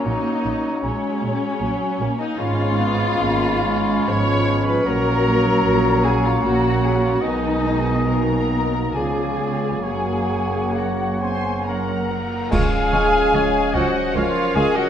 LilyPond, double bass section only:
\new Staff \with { instrumentName = "Double bass section" } { \clef bass \time 3/4 \key fis \major \tempo 4 = 74 ais,,8 ais,,8 ais,,8 ais,,8 ais,,8 ais,,8 | gis,,4 gis,,4 gis,,4 | ais,,4 ais,,4 ais,,4 | b,,2 cis,4 |
fis,,2~ fis,,8. r16 | \key des \major des,8 des,8 des,8 des,8 des,8 des,8 | }